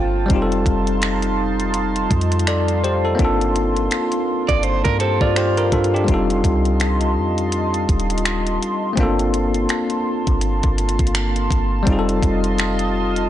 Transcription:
Already playing: 808-style bass G1, tine electric piano A#3 C4 D4 F4 A4, clean electric guitar F4, analog synth pad F4 C5 G5 A5
0.26 tine electric piano G3 C4, closed hi-hat
0.30 808-style bass F1, analog synth pad D#4 C6, tine electric piano D#4 F4, kick
0.36 tine electric piano G4
0.42 tine electric piano A4
0.52 closed hi-hat
0.66 808-style bass F1, kick, closed hi-hat
0.87 closed hi-hat
1.02 finger snap, closed hi-hat
1.22 closed hi-hat
1.60 closed hi-hat
1.74 closed hi-hat
1.96 closed hi-hat
2.11 808-style bass F2, kick, closed hi-hat
2.21 closed hi-hat
2.32 closed hi-hat
2.39 closed hi-hat
2.47 tine electric piano A4 D5, finger snap, closed hi-hat
2.68 closed hi-hat
2.84 tine electric piano G4 C5, closed hi-hat
3.05 tine electric piano D#4 A4
3.15 tine electric piano A#3 C4
3.19 808-style bass G1, analog synth pad A#3, tine electric piano D4 F4, kick, closed hi-hat
3.25 tine electric piano A4
3.41 closed hi-hat
3.56 closed hi-hat
3.76 closed hi-hat
3.91 finger snap, closed hi-hat
4.12 closed hi-hat
4.49 808-style bass G1, clean electric guitar D5, kick, closed hi-hat
4.63 clean electric guitar C5, closed hi-hat
4.84 808-style bass G2, clean electric guitar A#4, kick, closed hi-hat
5.00 tine electric piano G4 C5, clean electric guitar A4, closed hi-hat
5.21 808-style bass G2, clean electric guitar F4, tine electric piano A4 D5, kick
5.36 tine electric piano G4 C5, finger snap, closed hi-hat
5.57 tine electric piano F4 A#4, closed hi-hat
5.72 808-style bass G2, tine electric piano D4 A4, kick, closed hi-hat
5.84 closed hi-hat
5.94 tine electric piano D4 G4, closed hi-hat
6.04 tine electric piano G3 C4, closed hi-hat
6.08 808-style bass F1, tine electric piano D#4 F4, analog synth pad D#5 A5, kick
6.14 tine electric piano A4
6.30 closed hi-hat
6.44 808-style bass C2, kick, closed hi-hat
6.65 closed hi-hat
6.80 finger snap, closed hi-hat
7.01 closed hi-hat
7.17 808-style bass F2
7.38 closed hi-hat
7.52 closed hi-hat
7.74 closed hi-hat
7.89 808-style bass D#1, kick, closed hi-hat
8.00 closed hi-hat
8.10 closed hi-hat
8.18 closed hi-hat
8.25 finger snap, closed hi-hat
8.47 closed hi-hat
8.63 closed hi-hat
8.93 tine electric piano A3 C4, closed hi-hat
8.97 808-style bass G1, analog synth pad A#3 A5, tine electric piano A#3 D4 F4, kick
9.03 tine electric piano A4
9.19 closed hi-hat
9.34 closed hi-hat
9.54 closed hi-hat
9.69 finger snap, closed hi-hat
9.90 closed hi-hat
10.27 808-style bass G1, kick, closed hi-hat
10.41 closed hi-hat
10.63 808-style bass G1, kick, closed hi-hat
10.78 closed hi-hat
10.89 closed hi-hat
10.99 808-style bass G1, kick, closed hi-hat
11.07 closed hi-hat
11.15 finger snap, closed hi-hat
11.36 closed hi-hat
11.51 808-style bass G1, kick, closed hi-hat
11.83 tine electric piano G3 C4, analog synth pad D#5, kick, closed hi-hat
11.87 808-style bass F1, tine electric piano D#4 F4, analog synth pad F4 C6
11.92 tine electric piano G#4
11.99 tine electric piano A4
12.09 closed hi-hat
12.23 808-style bass F1, kick, closed hi-hat
12.44 closed hi-hat
12.58 finger snap, closed hi-hat
12.79 closed hi-hat
13.16 closed hi-hat

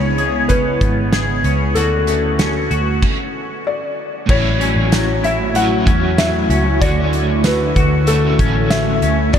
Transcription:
Already playing: picked electric bass C#2, analog synth pad C#3 G#3 B3 E4, clean electric guitar C#3 B3 C#4 G#4, felt piano C#5
0.18 clean electric guitar G#4, closed hi-hat
0.49 clean electric guitar C#4, felt piano B4, kick, closed hi-hat
0.81 picked electric bass G#1, clean electric guitar B3, kick, closed hi-hat
1.13 clean electric guitar G#4, snare, closed hi-hat
1.44 picked electric bass C#2, clean electric guitar C#4, closed hi-hat
1.75 picked electric bass D2, analog synth pad D3 A3 C#4 F#4, clean electric guitar D3 F#4, felt piano A4, closed hi-hat
2.07 clean electric guitar A3, closed hi-hat
2.39 clean electric guitar C#4, snare, closed hi-hat
2.71 picked electric bass D2, clean electric guitar F#4, closed hi-hat
3.02 kick, crash
3.67 felt piano D5
4.26 picked electric bass A1, overdriven electric guitar A2 F#3, clean electric guitar A2 E4, analog synth pad A3, kick, crash
4.30 overdriven electric guitar C#4 E4, analog synth pad E4 F#4, felt piano C#5
4.60 clean electric guitar C#4, closed hi-hat
4.76 picked electric bass A1
4.92 clean electric guitar F#3, snare, closed hi-hat, tambourine
5.24 clean electric guitar E4, felt piano E5, closed hi-hat
5.54 overdriven electric guitar A2 F#3 C#4, clean electric guitar F#3, felt piano F#5, closed hi-hat
5.59 overdriven electric guitar E4
5.85 picked electric bass E2, clean electric guitar C#4, overdriven electric guitar C#4 E4, kick, closed hi-hat
5.90 overdriven electric guitar F#3
6.18 clean electric guitar F#3, felt piano E5, snare, closed hi-hat, tambourine
6.50 picked electric bass C#2, clean electric guitar C#4, closed hi-hat
6.79 picked electric bass D2, overdriven electric guitar D3 A3, clean electric guitar D3 F#4, analog synth pad D3, felt piano D5, kick, closed hi-hat
6.87 overdriven electric guitar F#4
7.13 closed hi-hat
7.44 clean electric guitar A3, felt piano B4, snare, closed hi-hat, tambourine
7.76 picked electric bass D2, clean electric guitar F#4, kick, closed hi-hat
8.06 overdriven electric guitar D3 A3 C#4, clean electric guitar A3, felt piano A4, closed hi-hat
8.11 overdriven electric guitar F#4
8.38 picked electric bass A1, clean electric guitar C#4, overdriven electric guitar C#4 F#4, kick, closed hi-hat
8.43 overdriven electric guitar A3
8.70 clean electric guitar A3, felt piano E5, snare, closed hi-hat, tambourine
9.02 picked electric bass D2, clean electric guitar C#4, closed hi-hat
9.33 picked electric bass E2, overdriven electric guitar E3 B3, clean electric guitar E3 G#4, analog synth pad E3 B3 D4 G#4, felt piano D5, kick, closed hi-hat

